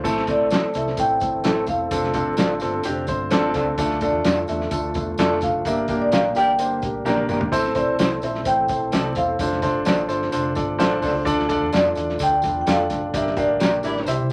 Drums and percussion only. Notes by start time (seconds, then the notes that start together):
0.05 kick, crash, tambourine
0.17 snare
0.27 kick, closed hi-hat, tambourine
0.50 snare, closed hi-hat, tambourine
0.74 closed hi-hat, tambourine
0.87 snare
0.97 kick, closed hi-hat, tambourine
1.20 kick, closed hi-hat, tambourine
1.44 snare, closed hi-hat, tambourine
1.67 kick, closed hi-hat, tambourine
1.91 kick, closed hi-hat, tambourine
2.03 snare
2.14 kick, closed hi-hat, tambourine
2.37 snare, closed hi-hat, tambourine
2.60 closed hi-hat, tambourine
2.83 closed hi-hat, tambourine
3.07 kick, closed hi-hat, tambourine
3.31 snare, closed hi-hat, tambourine
3.54 kick, snare, closed hi-hat, tambourine
3.78 kick, closed hi-hat, tambourine
3.90 snare
4.01 kick, closed hi-hat, tambourine
4.24 snare, closed hi-hat, tambourine
4.48 closed hi-hat, tambourine
4.60 snare
4.71 kick, closed hi-hat, tambourine
4.94 kick, closed hi-hat, tambourine
5.18 snare, closed hi-hat, tambourine
5.41 kick, snare, closed hi-hat, tambourine
5.65 kick, closed hi-hat, tambourine
5.88 kick, closed hi-hat, tambourine
6.12 snare, closed hi-hat, tambourine
6.35 closed hi-hat, tambourine
6.59 closed hi-hat, tambourine
6.82 kick, closed hi-hat, tambourine
7.06 snare, tambourine
7.17 high tom
7.29 mid tom, tambourine
7.41 floor tom
7.52 kick, closed hi-hat, tambourine
7.65 snare
7.75 kick, closed hi-hat, tambourine
7.99 snare, closed hi-hat, tambourine
8.22 closed hi-hat, tambourine
8.35 snare
8.45 kick, closed hi-hat, tambourine
8.68 kick, closed hi-hat, tambourine
8.92 snare, closed hi-hat, tambourine
9.15 kick, closed hi-hat, tambourine
9.39 kick, closed hi-hat, tambourine
9.52 snare
9.62 kick, closed hi-hat, tambourine
9.85 snare, closed hi-hat, tambourine
10.09 closed hi-hat, tambourine
10.22 snare
10.32 closed hi-hat, tambourine
10.55 kick, closed hi-hat, tambourine
10.79 snare, closed hi-hat, tambourine
11.02 kick, snare, open hi-hat, tambourine
11.26 kick, closed hi-hat, tambourine
11.39 snare
11.49 kick, closed hi-hat, tambourine
11.73 snare, closed hi-hat, tambourine
11.95 closed hi-hat, tambourine
12.09 snare
12.19 kick, closed hi-hat, tambourine
12.42 kick, closed hi-hat, tambourine
12.67 snare, closed hi-hat, tambourine
12.90 kick, snare, closed hi-hat, tambourine
13.14 kick, closed hi-hat, tambourine
13.26 snare
13.37 kick, closed hi-hat, tambourine
13.60 snare, closed hi-hat, tambourine
13.83 closed hi-hat, tambourine
13.97 snare
14.06 closed hi-hat, tambourine